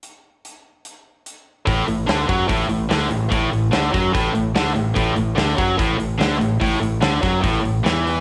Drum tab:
HH |x-x-x-x-|oooooooo|oooooooo|oooooooo|
SD |--------|--o---o-|--o---o-|--o---o-|
BD |--------|o--oo---|o--oo---|o--oo---|

HH |oooooooo|
SD |--oo--o-|
BD |o--oo---|